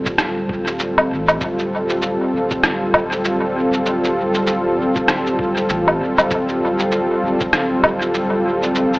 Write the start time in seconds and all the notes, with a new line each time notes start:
Already playing: D1 G3 C4 F4 A4
0.06 kick, cabasa
0.18 cross-stick, cabasa
0.49 kick
0.67 cabasa
0.79 cabasa
0.98 kick, low woodblock
1.11 A1
1.28 cabasa, low woodblock
1.41 D1, kick, cabasa
1.59 cabasa
1.90 cabasa
2.02 cabasa
2.33 D1
2.51 kick, cabasa
2.64 cross-stick, cabasa
2.94 kick, low woodblock
3.12 cabasa
3.25 cabasa
3.73 cabasa
3.86 cabasa
4.04 cabasa
4.35 cabasa
4.47 cabasa
4.78 D1
4.96 kick, cabasa
5.08 cross-stick, cabasa
5.26 cabasa
5.39 kick
5.57 cabasa
5.69 A1, cabasa
5.88 kick, low woodblock
6.00 D1
6.18 cabasa, low woodblock
6.31 D1, kick, cabasa
6.49 cabasa
6.79 cabasa
6.92 cabasa
7.22 D1
7.41 kick, cabasa
7.53 cross-stick, cabasa
7.84 kick, low woodblock
8.02 cabasa
8.14 cabasa
8.63 cabasa
8.75 cabasa
8.94 cabasa